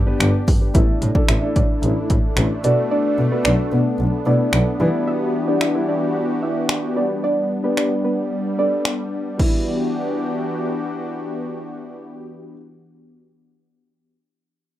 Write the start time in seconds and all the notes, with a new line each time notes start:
Already playing: B3 D4 G4
0.06 B3 D4 G4 B4
0.20 G1, finger snap, closed hi-hat
0.48 G2, kick, open hi-hat
0.61 G4 B4
0.74 A1 A3 D4 E4 A4 E5, kick, closed hi-hat
1.02 A2, closed hi-hat
1.15 A3 D4 E4 A4 D5, kick
1.29 A1 E4 E5, finger snap, closed hi-hat
1.42 A3 D4 E4 A4
1.56 A2 D4 D5, kick, closed hi-hat
1.83 A1, closed hi-hat
2.10 A2 E4 E5, kick, closed hi-hat
2.37 A1, finger snap, closed hi-hat
2.64 B2 A3 B3 D4 F#4 D5, closed hi-hat
2.91 D4 D5
3.18 B2
3.31 A3 B3 D4 F#4 B4
3.45 B1 D4 D5, finger snap
3.72 B2 B3 B4
3.99 B1
4.26 B2 A3 B3 D4 E4 D5
4.53 B1, finger snap
4.80 E3 G3 B3 D4 E4 F#4 G4
5.07 E4 E5
5.47 G3 B3 D4 G4 D5
5.61 E4 E5, finger snap
5.74 G3 B3 D4 E4
5.89 D4 D5
6.43 E4 E5
6.69 finger snap
6.96 G3 B3 D4 G4 D5
7.24 D4 D5
7.64 G3 B3 D4 G4 B4
7.77 D4 D5, finger snap
8.04 B3 B4
8.58 G3 B3 D4 A4 D5
8.85 finger snap
9.38 E3 G3 B3 D4 E4 F#4 G4, kick, crash